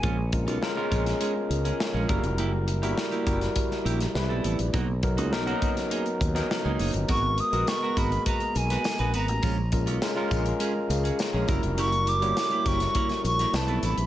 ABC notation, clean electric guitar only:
X:1
M:4/4
L:1/16
Q:1/4=102
K:F#
V:1 name="Clean electric guitar"
[G,CE] z2 [G,CE] z [G,CE] [G,CE] z [G,CG] z2 [G,CG] z [G,CG] [A,=EA] z | [A,=E=G] z2 [A,EG] z [A,EG] [A,EG] z3 [A,EG] z2 [B,E=A] [B,EA] z | [A,DF] z2 [A,DF] z [A,DF] [A,DF] z [A,DG] z2 [A,DG] z [A,DG] [A,DG] z | [B,FA] z2 [B,FA] z [B,FA] [B,FA] z [B,FB] z2 [B,FB] z [B,FB] [B,FB] z |
[G,CE] z2 [G,CE] z [G,CE] [G,CE] z [G,CG] z2 [G,CG] z [G,CG] [A,=EA] z | [A,=E=G] z2 [A,EG] z [A,EG] [A,EG] z [A,EA] z2 [A,EA] z [B,E=A] [B,EA] z |]